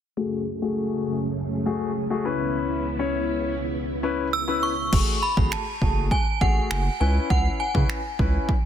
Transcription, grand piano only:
0.17 0.40 A3 medium
0.17 0.41 F#4 medium
0.17 0.41 G#4 medium
0.62 1.16 A3 medium
0.62 1.16 F#4 medium
0.62 1.16 G#4 medium
1.66 1.89 A3 medium
1.66 1.89 F#4 medium
1.66 1.89 G#4 medium
2.10 2.25 A3 medium
2.10 2.25 F#4 medium
2.10 2.25 G#4 medium
2.25 2.85 C#4 medium
2.25 2.85 E4 medium
2.25 2.85 B4 medium
2.99 3.54 C#4 medium
2.99 3.54 E4 medium
2.99 3.54 C#5 medium
4.03 4.27 C#4 medium
4.03 4.27 E4 medium
4.03 4.27 B4 medium
4.48 4.71 C#4 medium
4.48 4.71 E4 medium
4.48 4.71 B4 medium
4.92 5.16 A3 medium
4.92 5.16 F#4 medium
4.92 5.16 G#4 medium
5.37 5.60 A3 medium
5.37 5.60 F#4 medium
5.37 5.60 G#4 medium
5.81 6.13 A3 medium
5.81 6.13 F#4 medium
5.81 6.13 G#4 medium
6.41 6.80 A3 medium
6.41 6.80 F#4 medium
6.41 6.80 G#4 medium
7.00 7.60 C#4 medium
7.00 7.60 E4 medium
7.00 7.60 B4 medium
7.74 7.98 C#4 medium
7.74 7.98 E4 medium
7.74 7.98 B4 medium
8.19 8.50 C#4 medium
8.19 8.50 E4 medium
8.19 8.51 B4 medium

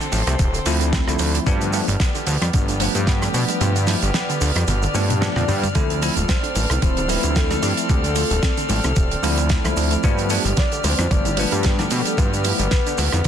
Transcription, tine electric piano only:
0.66 1.04 F3 loud
0.66 1.04 A3 medium
0.66 1.04 C4 medium
0.66 1.05 E4 loud
1.07 1.44 F3 medium
1.07 1.44 A3 medium
1.07 1.44 C4 medium
1.07 1.44 E4 medium
1.46 1.70 F3 loud
1.46 1.70 A3 medium
1.46 1.70 B3 medium
1.46 1.71 D4 loud
1.73 1.85 F3 medium
1.73 1.85 A3 medium
1.73 1.85 B3 medium
1.73 1.85 D4 loud
2.53 2.72 F3 medium
2.53 2.72 A3 medium
2.53 2.72 B3 medium
2.53 2.72 D4 medium
2.79 3.57 F3 medium
2.79 3.58 A3 medium
2.79 3.58 B3 medium
2.79 3.58 D4 loud
3.60 3.72 F3 medium
3.60 3.73 A3 medium
3.60 3.73 B3 medium
3.60 3.73 F4 medium
3.87 3.99 F3 medium
3.87 3.99 A3 medium
3.87 3.99 B3 medium
3.87 4.00 E4 medium
4.94 5.13 F3 medium
4.94 5.13 A3 medium
4.94 5.13 B3 medium
4.94 5.13 D4 loud
5.21 5.33 F3 loud
5.21 5.33 A3 medium
5.21 5.33 B3 medium
5.21 5.34 D4 loud
5.36 5.46 F3 medium
5.36 5.46 A3 medium
5.36 5.46 B3 medium
5.36 5.46 D4 medium
5.75 5.99 F3 loud
5.75 5.99 A3 medium
5.75 5.99 C4 medium
5.75 5.99 E4 loud
6.02 6.14 F3 medium
6.02 6.14 A3 medium
6.02 6.14 C4 medium
6.02 6.14 E4 loud
6.82 7.00 F3 medium
6.82 7.00 A3 medium
6.82 7.01 C4 medium
6.82 7.01 E4 medium
7.08 7.86 F3 medium
7.08 7.86 A3 medium
7.08 7.86 C4 medium
7.08 7.87 E4 loud
7.89 8.01 F3 medium
7.89 8.01 A3 medium
7.89 8.01 C4 medium
7.89 8.02 G4 medium
8.16 8.28 F3 medium
8.16 8.28 A3 medium
8.16 8.28 C4 medium
8.16 8.28 F4 medium
9.23 9.61 F3 loud
9.23 9.61 A3 medium
9.23 9.61 C4 medium
9.23 9.62 E4 loud
9.64 10.00 F3 medium
9.64 10.01 A3 medium
9.64 10.01 C4 medium
9.64 10.01 E4 medium
10.03 10.27 F3 loud
10.03 10.27 A3 medium
10.03 10.28 B3 medium
10.03 10.28 D4 loud
10.30 10.42 F3 medium
10.30 10.42 A3 medium
10.30 10.42 B3 medium
10.30 10.42 D4 loud
11.11 11.29 F3 medium
11.11 11.29 A3 medium
11.11 11.29 B3 medium
11.11 11.29 D4 medium
11.37 12.15 F3 medium
11.37 12.15 A3 medium
11.37 12.15 B3 medium
11.37 12.16 D4 loud
12.18 12.30 F3 medium
12.18 12.30 A3 medium
12.18 12.30 B3 medium
12.18 12.30 F4 medium
12.45 12.57 F3 medium
12.45 12.57 A3 medium
12.45 12.57 B3 medium
12.45 12.57 E4 medium

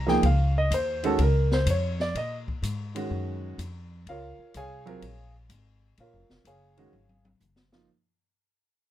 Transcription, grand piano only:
0.07 0.21 F3 medium
0.07 0.21 A#3 medium
0.07 0.22 D#4 medium
0.07 0.22 G#4 medium
0.07 0.24 G5 medium
0.26 0.56 F5 medium
0.58 0.72 D#5 medium
0.74 1.04 C5 medium
1.03 1.17 D#3 medium
1.03 1.18 G#3 medium
1.03 1.18 C#4 medium
1.03 1.18 F#4 medium
1.03 1.19 A4 medium
1.22 1.52 A#4 medium
1.53 1.67 C5 medium
1.70 2.00 C#5 medium
2.01 2.15 D5 medium
2.17 2.36 D#5 medium
2.95 3.55 D#3 medium
2.95 3.55 G#3 medium
2.95 3.56 C#4 medium
2.95 3.56 F#4 medium
4.09 4.52 F4 medium
4.09 4.52 A#4 medium
4.09 4.52 C#5 medium
4.09 4.52 F5 medium
4.57 5.32 G#4 medium
4.57 5.32 C#5 medium
4.57 5.32 F5 medium
4.57 5.32 G#5 loud
4.86 5.00 F#3 medium
4.86 5.00 C4 medium
4.86 5.00 F4 medium
4.86 5.01 A#4 medium
6.00 6.43 F4 soft
6.00 6.44 A#4 soft
6.00 6.44 C#5 soft
6.00 6.43 F5 medium
6.47 7.22 G#4 medium
6.47 7.22 C#5 medium
6.47 7.22 F5 medium
6.47 7.22 G#5 medium
6.77 6.91 D#3 medium
6.77 6.91 G#3 medium
6.77 6.92 C#4 medium
6.77 6.92 F#4 medium
7.72 7.86 F3 medium
7.72 7.87 A#3 medium
7.72 7.87 D#4 medium
7.72 7.87 F4 medium

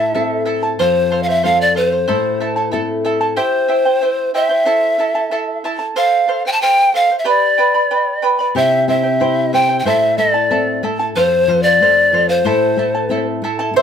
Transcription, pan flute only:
0.00 0.42 E5 medium
0.80 1.25 C5 medium
1.23 1.31 F5 medium
1.29 1.46 E5 medium
1.45 1.60 F5 medium
1.61 1.76 D5 loud
1.77 2.70 C5 medium
3.37 4.31 C5 loud
4.35 5.61 E5 loud
5.97 6.42 F5 medium
6.47 6.54 G5 loud
6.52 6.63 A5 medium
6.61 6.95 G5 loud
6.95 7.18 F5 loud
7.19 7.30 E5 medium
7.28 8.25 D5 medium
8.58 8.87 E5 medium
8.89 9.55 E5 medium
9.54 9.79 G5 medium
9.79 9.88 G5 medium
9.86 10.19 E5 loud
10.18 10.83 D5 medium
11.16 11.64 C5 loud
11.63 12.30 D5 loud
12.29 13.26 C5 medium

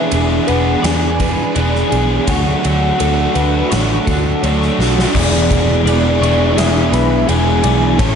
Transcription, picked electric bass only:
0.12 0.38 E1 medium
0.49 0.75 E1 medium
0.84 1.36 E2 medium
1.56 1.82 E1 medium
1.92 2.18 B1 medium
2.28 2.54 D2 medium
2.65 2.91 D2 medium
3.01 3.26 D2 medium
3.36 3.61 D2 medium
3.72 3.98 A1 medium
4.08 4.33 D2 medium
4.43 4.69 D2 medium
4.79 5.04 B1 medium
5.15 5.47 E1 loud
5.51 5.83 E1 medium
5.84 6.17 E1 medium
6.21 6.53 E1 loud
6.57 6.89 E1 medium
6.92 7.24 B1 medium
7.29 7.60 E1 medium
7.64 7.96 B1 medium
7.99 8.15 A1 loud

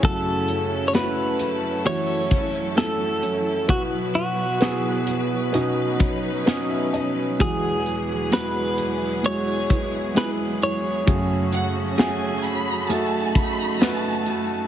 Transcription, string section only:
0.04 14.67 F#3 medium
0.04 3.66 C#4 medium
0.04 5.50 E4 medium
0.04 3.65 A4 medium
3.69 5.52 B3 medium
3.69 7.37 B4 medium
5.54 7.38 C#4 medium
5.54 7.38 D#4 medium
7.40 11.04 B3 medium
7.40 11.05 E4 medium
7.40 11.04 G#4 medium
11.09 14.67 A3 medium
11.09 12.89 C#4 medium
11.09 14.67 F#4 medium
12.91 14.67 D#4 medium

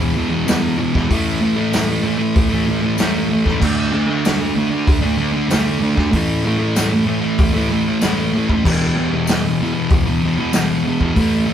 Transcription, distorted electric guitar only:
0.00 0.15 B2 medium
0.00 0.17 E3 medium
0.14 0.45 E2 medium
0.14 0.33 B2 medium
0.14 0.29 E3 medium
0.30 0.49 E3 medium
0.34 0.47 B2 medium
0.46 0.76 E2 medium
0.46 0.79 B2 medium
0.46 0.80 E3 loud
0.78 1.08 E2 medium
0.78 0.97 B2 medium
0.78 0.92 E3 medium
0.94 1.08 E3 medium
0.98 1.09 B2 medium
1.09 1.39 A2 medium
1.09 1.41 E3 loud
1.09 1.44 A3 loud
1.41 1.88 A2 medium
1.41 1.58 E3 medium
1.45 1.56 A3 medium
1.56 2.04 E3 medium
1.56 2.07 A3 medium
2.04 2.52 A2 medium
2.04 2.21 E3 medium
2.04 2.18 A3 medium
2.18 2.53 E3 medium
2.18 2.49 A3 medium
2.49 2.70 A3 medium
2.54 2.67 E3 medium
2.66 2.96 A2 medium
2.66 2.84 E3 medium
2.70 2.81 A3 medium
2.81 2.98 E3 medium
2.81 3.01 A3 medium
2.97 3.28 A2 medium
2.97 3.30 E3 loud
3.01 3.33 A3 loud
3.29 3.60 A2 medium
3.29 3.49 E3 medium
3.33 3.45 A3 medium
3.45 3.62 A3 medium
3.50 3.62 E3 medium
3.60 3.91 D3 medium
3.60 3.93 A3 medium
3.65 3.94 D4 loud
3.92 4.40 D3 medium
3.92 4.10 A3 medium
3.92 4.05 D4 medium
4.07 4.57 D4 medium
4.11 4.55 A3 medium
4.54 5.02 D3 medium
4.54 4.73 A3 medium
4.54 4.69 D4 medium
4.70 5.04 A3 medium
4.70 5.00 D4 medium
5.01 5.17 A3 medium
5.01 5.19 D4 medium
5.17 5.47 D3 medium
5.17 5.35 A3 medium
5.17 5.32 D4 medium
5.33 5.49 A3 medium
5.33 5.51 D4 medium
5.48 5.78 D3 medium
5.48 5.80 A3 loud
5.52 5.82 D4 loud
5.80 6.11 D3 medium
5.80 5.98 A3 medium
5.80 5.94 D4 medium
5.96 6.12 A3 medium
5.96 6.11 D4 medium
6.12 6.42 A2 medium
6.12 6.45 E3 loud
6.12 6.46 A3 medium
6.43 6.91 A2 medium
6.43 6.62 E3 medium
6.43 6.57 A3 medium
6.58 7.07 A3 medium
6.63 7.06 E3 medium
7.04 7.53 A2 medium
7.04 7.25 E3 medium
7.04 7.20 A3 medium
7.21 7.52 A3 medium
7.26 7.57 E3 medium
7.53 7.71 A3 medium
7.58 7.71 E3 medium
7.69 7.99 A2 medium
7.69 7.88 E3 medium
7.69 7.83 A3 medium
7.85 8.02 E3 medium
7.85 8.03 A3 medium
8.00 8.32 A2 medium
8.00 8.35 E3 medium
8.04 8.36 A3 loud
8.34 8.63 A2 medium
8.34 8.53 E3 medium
8.34 8.48 A3 medium
8.49 8.68 E3 medium
8.49 8.63 A3 medium
8.64 8.94 E2 medium
8.64 8.97 B2 medium
8.68 8.99 E3 loud
8.96 9.43 E2 medium
8.96 9.14 B2 medium
8.96 9.12 E3 medium
9.12 9.61 B2 medium
9.12 9.63 E3 medium
9.60 10.07 E2 medium
9.60 9.77 B2 medium
9.60 9.73 E3 medium
9.74 10.04 E3 medium
9.78 10.08 B2 medium
10.05 10.23 B2 medium
10.05 10.25 E3 medium
10.22 10.52 E2 medium
10.22 10.41 B2 medium
10.26 10.37 E3 medium
10.38 10.56 E3 medium
10.42 10.53 B2 medium
10.53 10.83 E2 medium
10.53 10.84 B2 medium
10.57 10.87 E3 medium
10.84 11.14 E2 medium
10.84 11.03 B2 medium
10.88 10.99 E3 medium
11.00 11.14 B2 medium
11.00 11.14 E3 medium
11.15 11.45 A2 loud
11.15 11.47 E3 medium
11.19 11.50 A3 loud
11.46 11.53 A2 medium
11.46 11.53 E3 medium
11.46 11.53 A3 medium

